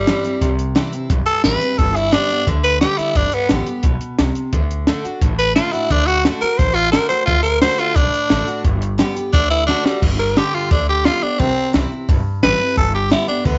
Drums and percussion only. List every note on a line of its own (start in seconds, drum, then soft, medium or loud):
0.07 snare loud
0.07 closed hi-hat medium
0.24 closed hi-hat medium
0.41 kick loud
0.41 closed hi-hat medium
0.59 closed hi-hat medium
0.76 snare loud
0.76 closed hi-hat medium
0.93 closed hi-hat medium
1.10 kick loud
1.10 closed hi-hat medium
1.27 closed hi-hat medium
1.44 snare loud
1.44 closed hi-hat medium
1.61 closed hi-hat medium
1.79 kick loud
1.79 closed hi-hat medium
1.96 closed hi-hat medium
2.13 snare loud
2.13 closed hi-hat medium
2.30 closed hi-hat medium
2.47 kick loud
2.47 closed hi-hat medium
2.64 closed hi-hat medium
2.81 snare loud
2.81 closed hi-hat medium
2.99 closed hi-hat medium
3.15 kick loud
3.15 closed hi-hat medium
3.32 closed hi-hat medium
3.49 snare loud
3.49 closed hi-hat medium
3.66 closed hi-hat medium
3.83 kick loud
3.83 closed hi-hat medium
4.01 closed hi-hat medium
4.19 snare loud
4.19 closed hi-hat medium
4.35 closed hi-hat medium
4.53 kick loud
4.53 closed hi-hat medium
4.71 closed hi-hat medium
4.87 snare loud
4.87 closed hi-hat medium
5.05 closed hi-hat medium
5.21 kick loud
5.21 closed hi-hat medium
5.39 closed hi-hat medium
5.56 snare loud
5.56 closed hi-hat medium
5.74 closed hi-hat medium
5.90 kick loud
5.90 closed hi-hat medium
6.08 closed hi-hat medium
6.25 snare loud
6.25 closed hi-hat medium
6.42 closed hi-hat medium
6.59 kick loud
6.59 closed hi-hat medium
6.76 closed hi-hat medium
6.93 snare loud
6.93 closed hi-hat medium
7.10 closed hi-hat medium
7.28 kick loud
7.28 closed hi-hat medium
7.45 closed hi-hat medium
7.62 snare loud
7.62 closed hi-hat medium
7.79 closed hi-hat medium
7.96 kick loud
7.96 closed hi-hat medium
8.14 closed hi-hat medium
8.30 snare loud
8.30 closed hi-hat medium
8.48 closed hi-hat medium
8.64 kick loud
8.64 closed hi-hat medium
8.82 closed hi-hat medium
8.99 snare loud
8.99 closed hi-hat medium
9.16 closed hi-hat medium
9.33 kick loud
9.33 closed hi-hat loud
9.51 closed hi-hat medium
9.69 snare medium
9.86 snare medium
10.02 kick loud
10.02 crash loud
10.37 snare loud
10.37 open hi-hat medium
10.71 kick loud
10.71 open hi-hat medium
11.05 snare loud
11.05 open hi-hat medium
11.40 kick loud
11.40 open hi-hat medium
11.74 snare loud
11.74 open hi-hat medium
12.09 kick loud
12.09 open hi-hat medium
12.43 snare loud
12.43 open hi-hat medium
12.77 kick loud
12.77 open hi-hat medium
13.11 snare loud
13.11 open hi-hat medium
13.45 kick loud
13.45 open hi-hat medium